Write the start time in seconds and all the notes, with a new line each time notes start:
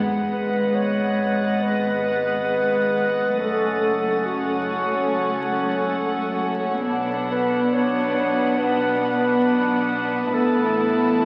Already playing: G#1 G#2 G#3 B3 B4 D#5 F#5 D#6, sub drop
0.31 B4
0.75 C#5 A6
1.63 B4
3.38 F#1 F#2 A3 C#4 A4 C#5 F#5
4.26 F#4
6.87 B1 B2 B3 D4 B4 F#5 B5
7.31 B4
7.73 C#5 D#6
8.59 B4
10.33 A1 A2 B3 E4 A4 B4 E5 A5
11.22 E4